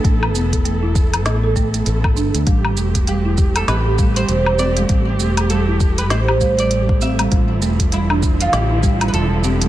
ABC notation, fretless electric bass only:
X:1
M:4/4
L:1/16
Q:"Swing 16ths" 1/4=99
K:Am
V:1 name="Fretless electric bass" clef=bass
A,,,2 E,,,6 A,,,4 A,,,2 G,,, D,, | A,,,2 E,,,6 A,,,4 E,,,4 | A,,,2 E,,,6 A,,,8 | A,,,2 E,,,6 A,,,4 E,,,4 |]